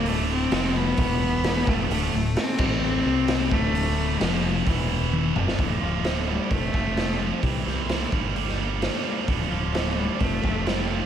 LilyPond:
<<
  \new Staff \with { instrumentName = "Clean electric guitar" } { \time 4/4 \key d \minor \tempo 4 = 130 r1 | r1 | r1 | d,8 f'8 a8 d8 f,8 a8 c'8 a8 |
c8 c''8 g'8 g,8 g8 bes8 d'8 bes8 | d,8 f'8 a8 d8 f,8 a8 c'8 a8 | }
  \new Staff \with { instrumentName = "Cello" } { \clef bass \time 4/4 \key d \minor a8 c'4 b2 a8 | a4 c'4 c'4. a8~ | a4 f4 e4. r8 | f4. g8 a4. f8 |
e2 r2 | f4. g8 a4 g8 f8 | }
  \new Staff \with { instrumentName = "Distorted electric guitar" } { \clef bass \time 4/4 \key d \minor <d, a, d>4 <f, c f>4 <e, b, e>4. <f, c f>8 | <d, a, d>8 <d, a,>8 r8 <a, e a>4 <c g c'>4 <d, a, d>8~ | <d, a, d>4 <f, c f>4 <e, b, e>4. <f, c f>8 | r1 |
r1 | r1 | }
  \new Staff \with { instrumentName = "Distorted electric guitar" } { \clef bass \time 4/4 \key d \minor <d, a, d>4 <f, c f>4 <e, b, e>4. <f, c f>8 | <d, a, d>8 <d, a,>8 r8 <a, e a>4 <c g c'>4 <d, a, d>8~ | <d, a, d>4 <f, c f>4 <e, b, e>4. <f, c f>8 | <d, a, d>8 <d, a, d>8 <d, a, d>8 <d, a, d>8 <f, c f>8 <f, c f>8 <f, c f>8 <f, c f>8 |
<c g c'>8 <c g c'>8 <c g c'>8 <g, d g>8 <g, d g>8 <g, d g>8 <g, d g>8 <g, d g>8 | <d, a, d>8 <d, a, d>8 <d, a, d>8 <d, a, d>8 <f, c f>8 <f, c f>8 <f, c f>8 <f, c f>8 | }
  \new Staff \with { instrumentName = "Fingered electric bass" } { \clef bass \time 4/4 \key d \minor d,,4 f,,4 e,,4. f,,8 | d,,8 d,,8 r8 a,,4 c,4 d,,8~ | d,,4 f,,4 e,,4. f,,8 | d,,8 d,,4. f,,8 f,,4. |
c,8 c,4 g,,2 r8 | d,,8 d,,4. f,,8 f,,4. | }
  \new DrumStaff \with { instrumentName = "Drums" } \drummode { \time 4/4 hho4 <hho sn>4 <hho bd>4 <hho sn>8 bd8 | hho4 <hho sn>8 <cymc bd>8 r4 <hho sn>8 bd8 | hho4 <hho sn>4 <hho bd>4 tommh8 toml16 sn16 | <hho bd>4 <hho sn>4 <hho bd>8 bd8 <hho sn>4 |
<hho bd>8 sn8 <hho sn>8 bd8 hho16 sn8. <hho sn>4 | <hho bd>4 <hho sn>4 <hho bd>8 bd8 <hho sn>4 | }
>>